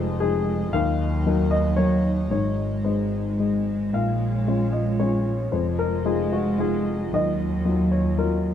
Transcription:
Already playing: double bass F1, upright piano F2 F3 D#4 G#4 C5, cello G#3, analog synth pad G#3 F4 D#5
0.20 upright piano F3 D#4 G#4
0.73 double bass D#2, upright piano D#2 F5, analog synth pad F#3 D#4, cello F#3
1.26 upright piano F#3 D#4 A#4
1.51 upright piano D#5
1.76 upright piano F#3 D#4 A#4 C#5
2.30 double bass G#1, upright piano G#2 C#5, cello G#3, analog synth pad G#3
2.85 upright piano G#3 D#4 G#4 C5
3.40 upright piano G#3 D#4 G#4
3.93 double bass A#1, upright piano A#2 F5, analog synth pad F4 C#5
4.47 upright piano G#3 C#4 F4
4.72 upright piano D#5
5.00 upright piano G#3 C#4 F4 C#5
5.52 double bass F1, upright piano F2 C5, cello G#3, analog synth pad D#5
5.79 upright piano A#4
6.05 upright piano G#3 D#4 F4 G#4
6.32 upright piano F#4
6.58 upright piano G#3 D#4 F4 G#4
7.13 double bass D#2, upright piano D#2 D#5, cello F#3, analog synth pad F#3
7.65 upright piano F#3 D#4 F4
7.92 upright piano C#5
8.17 cello F#3, upright piano F#3 D#4 F4 A#4

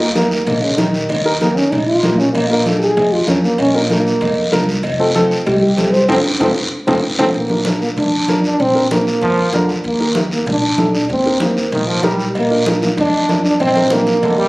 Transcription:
Already playing: upright bass D#2
0.00 french horn A#3
0.14 french horn A#3, upright piano D#4 G4 A#4, cowbell, high conga, short guiro
0.30 french horn A#3, short guiro
0.45 upright bass A#1, french horn A#3, cowbell, high conga, low conga, long guiro
0.62 french horn C#3
0.77 upright bass A#1, french horn D#3, upright piano D#4 G4 A#4, cowbell, high conga, short guiro
0.94 short guiro
1.09 upright bass D#2, cowbell, high conga, low conga, long guiro
1.25 upright piano D#4 G4 A#4
1.40 french horn A#3, upright piano D#4 G4 A#4, cowbell, high conga, short guiro
1.55 french horn C#4, short guiro
1.71 upright bass A#1, french horn D#4, cowbell, high conga, low conga, long guiro
1.86 french horn F4
2.03 upright bass A#1, upright piano D#4 G4 A#4, cowbell, high conga, low timbale, short guiro
2.19 french horn C#4, short guiro
2.33 upright bass A#1, french horn A#3, cowbell, high conga, long guiro
2.49 french horn A#3, upright piano D4 F4 A#4
2.66 upright piano D4 F4 A4, cowbell, high conga, short guiro
2.79 french horn G#4, short guiro
2.97 upright bass F2, cowbell, high conga, low conga, long guiro
3.13 french horn F4
3.28 upright bass F2, french horn C#4, upright piano D4 F4 A#4, cowbell, high conga, short guiro
3.44 french horn A#3, short guiro
3.58 upright bass A#1, french horn C#4, cowbell, high conga, long guiro
3.74 french horn A#3, upright piano D4 F4 A#4
3.90 french horn A#3, upright piano D4 F4 A#4, cowbell, high conga, short guiro
4.07 short guiro
4.21 upright bass F2, cowbell, high conga, low conga, long guiro
4.52 upright bass C2, upright piano D4 F4 A#4, cowbell, high conga, low conga, short guiro
4.69 short guiro
4.83 upright bass F1, cowbell, high conga, long guiro
4.99 upright piano C4 F4 A4
5.15 upright piano C4 F4 A4, cowbell, high conga, short guiro
5.31 short guiro
5.46 upright bass C2, french horn G4, cowbell, high conga, low conga, long guiro
5.62 french horn G4
5.77 upright bass C2, upright piano C4 F4 A4, cowbell, high conga, short guiro
5.92 french horn C5, short guiro
6.08 upright bass F2, french horn C4, upright piano D#4 F4 A4, low conga, high timbale, long guiro
6.40 upright bass F2, french horn C4, upright piano D#4 F4 A4, low conga, high timbale
6.87 upright bass F2, french horn C4, upright piano D#4 F4 A4, low conga, high timbale, long guiro
7.18 upright bass F2, french horn C4, upright piano D#4 F4 A4, low conga, high timbale, long guiro
7.34 upright bass A#1, french horn A#3, high conga, long guiro
7.49 upright piano D4 F4 A#4, high conga
7.65 upright piano D4 F4 A#4, high conga, short guiro
7.81 french horn A#3, short guiro
7.97 upright bass F2, french horn D4, low conga, long guiro
8.12 high conga
8.28 upright bass F2, upright piano D4 F4 A#4, high conga, short guiro
8.44 french horn D4, short guiro
8.60 upright bass A#1, french horn C4, high conga, low conga, long guiro
8.74 upright piano D4 F4 A#4
8.91 french horn A#3, upright piano D4 F4 A#4, high conga, short guiro
9.07 short guiro
9.21 upright bass F2, trombone F3, low conga, long guiro
9.37 high conga
9.52 upright bass F2, trombone D3, upright piano D4 F4 A#4, high conga, low conga, short guiro
9.69 short guiro
9.84 upright bass D#2, french horn A#3, high conga, long guiro
10.00 upright piano D#4 G4 A#4
10.15 upright piano D#4 G4 A#4, high conga, short guiro
10.31 french horn A#3, short guiro
10.46 upright bass A#1, french horn D4, low conga, long guiro
10.63 high conga
10.78 upright bass A#1, upright piano D#4 G4 A4, high conga, short guiro
10.95 french horn D4, short guiro
11.09 upright bass D#2, french horn C4, high conga, low conga, long guiro
11.26 upright piano D#4 G4 A#4
11.40 french horn A#3, upright piano D#4 G4 C5, high conga, short guiro
11.57 short guiro
11.72 upright bass A#1, trombone D#3, low conga, long guiro
11.87 trombone F3, high conga
12.03 upright bass A#1, trombone G3, upright piano D#4 G4 A#4, high conga, low conga, short guiro
12.19 short guiro
12.35 upright bass A#1, french horn A#3, cowbell, high conga, long guiro
12.50 upright piano D4 F4 A#4
12.66 upright piano D4 F4 A#4, high conga, short guiro
12.82 french horn A#3, high conga, short guiro
12.97 upright bass F2, french horn D4, cowbell, low conga, long guiro
13.15 high conga
13.28 upright bass F2, upright piano D4 F4 A#4, high conga, short guiro
13.45 french horn D4, short guiro
13.60 upright bass A#1, french horn C4, cowbell, high conga, long guiro
13.75 upright piano D4 F4 A#4, high conga
13.90 french horn A#3, upright piano D4 F4 A#4, high conga, short guiro
14.07 high conga, short guiro
14.22 upright bass F2, trombone D3, cowbell, low conga, long guiro
14.37 trombone G3, high conga

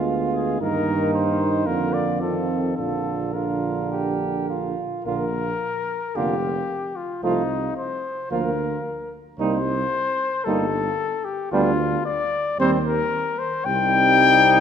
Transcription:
Already playing: tuba D2, trombone G#3, french horn B3, flugelhorn F4
0.34 trumpet G#4
0.61 tuba G2, trombone D#3, french horn A#3, flugelhorn D#4, trumpet A#4
1.14 trumpet C5
1.65 tuba F2, trombone D3, french horn A#3, flugelhorn F4, trumpet A#4
1.93 trumpet D5
2.20 trombone D#3, french horn C4, flugelhorn F4, trumpet A4
2.77 tuba A#1, trombone D3, french horn D4, flugelhorn F4, trumpet A4
3.34 trombone D3, french horn D4, flugelhorn F4, trumpet A#4
3.92 flugelhorn G4
4.49 flugelhorn F4
5.05 tuba A#1, trombone D3, french horn A#3, flugelhorn F4, trumpet A#4
6.16 tuba F1, trombone D3, french horn A#3, flugelhorn F4, trumpet G4
6.96 trumpet F4
7.23 tuba C2, trombone F3, french horn A3, trumpet D#4, flugelhorn F4
7.77 trumpet C5
8.31 tuba D2, trombone F3, french horn A#3, flugelhorn F4, trumpet A#4
9.39 tuba C2, trombone G3, french horn A#3, flugelhorn D#4, trumpet C5
10.45 tuba G1, trombone G3, french horn A#3, flugelhorn D#4, trumpet A4
11.25 trumpet G4
11.52 tuba D2, trombone G3, french horn B3, flugelhorn D4, trumpet F4
12.05 trumpet D5
12.59 tuba D#2, trombone G3, french horn C4, flugelhorn C4, trumpet C5
12.86 trumpet A#4
13.39 trumpet C5
13.65 tuba C2, trombone G3, french horn C4, flugelhorn D#4, trumpet G5

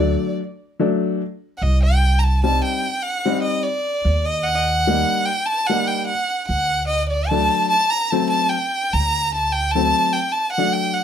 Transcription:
Already playing: upright bass D2, upright piano F#3, violin D5
0.00 upright piano A3 D4
0.80 upright piano F#3 A3 D4
1.57 violin F#5
1.62 upright bass C2, violin D#5
1.83 violin G5
2.19 violin A#5
2.24 violin A5
2.44 upright piano G3 C4 D#4, violin A5
2.64 violin G5
3.02 violin F#5
3.25 upright piano G3 C4 D#4
3.42 violin D#5
3.63 violin D5
4.05 upright bass D#2
4.25 violin D#5
4.43 violin F#5
4.55 violin D#5 F#5
4.87 upright piano G3 A#3 D#4
5.25 violin G5
5.46 violin A5
5.67 upright piano G3 A#3 D#4, violin F#5
5.87 violin G5
6.06 violin F#5
6.48 upright bass D2, violin F#5
6.87 violin D#5
7.08 violin D5
7.28 upright piano F#3 A3 D4, violin A5
7.70 violin A5
7.90 violin A#5
8.10 upright piano F#3 A3 C4, violin A5
8.30 violin A5
8.50 violin G5
8.93 upright bass D2, violin A#5
9.34 violin A5
9.52 violin G5
9.71 upright piano F#3, violin A5
9.76 upright piano A3 C4
10.13 violin G5
10.32 violin A5
10.52 violin F#5
10.58 upright piano F#3 A3 D4
10.73 violin G5
10.93 violin F#5

